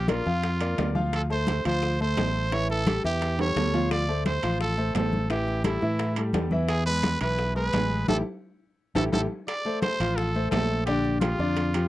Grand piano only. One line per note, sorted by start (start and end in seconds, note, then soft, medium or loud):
0.09 0.23 A#3 medium
0.09 0.23 A#4 medium
0.09 0.23 D5 medium
0.26 0.55 F3 medium
0.26 0.55 F4 medium
0.26 0.55 F5 medium
0.61 0.75 A#3 medium
0.61 0.75 A#4 medium
0.61 0.75 D5 medium
0.78 0.92 A#3 medium
0.78 0.93 A#4 medium
0.78 0.93 D5 medium
0.95 1.24 F3 medium
0.95 1.24 F4 medium
0.95 1.24 F5 medium
1.30 1.59 A3 medium
1.30 1.59 A4 medium
1.30 1.59 C5 medium
1.65 1.94 F3 medium
1.65 1.94 F4 medium
1.65 1.94 F5 medium
2.00 2.14 A3 medium
2.00 2.15 A4 medium
2.00 2.15 C5 medium
2.18 2.46 A3 medium
2.18 2.46 A4 medium
2.18 2.46 C5 medium
2.52 2.81 E3 medium
2.52 2.81 E4 medium
2.52 2.81 E5 medium
2.87 3.01 G3 medium
2.87 3.01 G4 medium
2.87 3.01 A4 medium
3.04 3.33 E3 medium
3.04 3.33 E4 medium
3.04 3.33 E5 medium
3.39 3.53 G3 medium
3.39 3.53 G4 medium
3.39 3.54 A4 medium
3.57 3.71 G3 medium
3.57 3.71 G4 medium
3.57 3.71 A4 medium
3.73 4.02 F3 medium
3.73 4.02 F4 medium
3.73 4.03 F5 medium
4.08 4.37 A3 medium
4.08 4.37 A4 medium
4.08 4.37 C5 medium
4.43 4.72 F3 medium
4.43 4.72 F4 medium
4.43 4.72 F5 medium
4.78 4.92 A3 medium
4.78 4.92 A4 medium
4.78 4.92 C5 medium
4.95 5.24 A3 medium
4.95 5.24 A4 medium
4.95 5.24 C5 medium
5.30 5.59 E3 medium
5.30 5.59 E4 medium
5.30 5.59 E5 medium
5.65 5.79 G3 medium
5.65 5.79 G4 medium
5.65 5.79 A4 medium
5.82 6.11 E3 medium
5.82 6.11 E4 medium
5.82 6.11 E5 medium
6.17 6.31 G3 medium
6.17 6.32 G4 medium
6.17 6.32 A4 medium
6.34 6.49 G3 medium
6.34 6.49 G4 medium
6.34 6.49 A4 medium
6.52 6.80 E3 medium
6.52 6.80 E4 medium
6.52 6.81 E5 medium
6.86 7.15 G#3 medium
6.86 7.15 G#4 medium
6.86 7.15 B4 medium
7.21 7.50 E3 medium
7.21 7.50 E4 medium
7.21 7.50 E5 medium
7.55 7.70 G#3 medium
7.55 7.70 G#4 medium
7.55 7.70 B4 medium
7.73 8.02 G#3 medium
7.73 8.02 G#4 medium
7.73 8.02 B4 medium
8.08 8.20 E4 loud
8.08 8.19 G4 loud
8.08 8.20 A4 medium
8.95 9.06 E4 medium
8.95 9.06 G4 medium
8.95 9.06 A4 medium
9.12 9.24 E4 medium
9.12 9.24 G4 loud
9.12 9.24 A4 loud
9.65 9.94 A3 medium
9.65 9.94 A4 medium
9.65 9.94 C5 medium
10.00 10.29 F3 medium
10.00 10.29 F4 medium
10.00 10.29 F5 medium
10.35 10.49 A3 medium
10.35 10.49 A4 medium
10.35 10.50 C5 medium
10.53 10.81 A3 medium
10.53 10.81 A4 medium
10.53 10.82 C5 medium
10.87 11.16 D3 medium
10.87 11.16 D4 medium
10.87 11.16 D5 medium
11.22 11.36 F3 medium
11.22 11.36 F4 medium
11.22 11.37 G4 medium
11.39 11.68 D3 medium
11.39 11.68 D4 medium
11.39 11.68 D5 medium
11.75 11.88 F3 medium
11.75 11.88 F4 medium
11.75 11.88 G4 medium